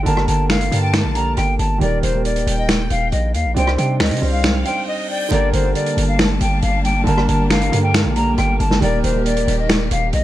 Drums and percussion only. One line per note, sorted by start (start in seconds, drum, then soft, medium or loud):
0.06 closed hi-hat medium
0.17 cross-stick medium
0.28 closed hi-hat medium
0.50 finger snap medium
0.50 snare loud
0.50 closed hi-hat medium
0.61 closed hi-hat medium
0.72 closed hi-hat medium
0.93 finger snap medium
0.93 snare loud
0.93 closed hi-hat medium
1.15 closed hi-hat medium
1.37 cross-stick medium
1.37 closed hi-hat medium
1.59 closed hi-hat medium
1.81 closed hi-hat medium
2.03 closed hi-hat medium
2.25 closed hi-hat medium
2.36 closed hi-hat medium
2.47 closed hi-hat medium
2.69 finger snap medium
2.69 snare loud
2.69 closed hi-hat medium
2.90 closed hi-hat medium
3.12 closed hi-hat medium
3.34 closed hi-hat medium
3.56 closed hi-hat medium
3.67 cross-stick loud
3.78 closed hi-hat medium
4.00 finger snap medium
4.00 snare loud
4.00 closed hi-hat soft
4.06 closed hi-hat medium
4.11 closed hi-hat medium
4.16 closed hi-hat medium
4.22 open hi-hat medium
4.44 finger snap medium
4.44 snare loud
4.44 closed hi-hat medium
4.65 closed hi-hat medium
5.32 closed hi-hat medium
5.53 closed hi-hat medium
5.75 closed hi-hat medium
5.86 closed hi-hat medium
5.98 closed hi-hat medium
6.19 finger snap medium
6.19 snare loud
6.19 closed hi-hat medium
6.41 closed hi-hat medium
6.62 closed hi-hat medium
6.85 closed hi-hat medium
7.07 closed hi-hat medium
7.18 cross-stick loud
7.29 closed hi-hat medium
7.50 finger snap medium
7.50 snare loud
7.50 closed hi-hat medium
7.61 closed hi-hat medium
7.73 closed hi-hat medium
7.94 finger snap medium
7.94 snare loud
7.94 closed hi-hat medium
8.16 closed hi-hat medium
8.38 cross-stick medium
8.38 closed hi-hat medium
8.60 closed hi-hat medium
8.71 snare medium
8.82 closed hi-hat medium
9.04 closed hi-hat medium
9.26 closed hi-hat medium
9.37 closed hi-hat medium
9.48 closed hi-hat medium
9.69 finger snap medium
9.69 snare loud
9.69 closed hi-hat medium
9.91 closed hi-hat medium
10.13 closed hi-hat medium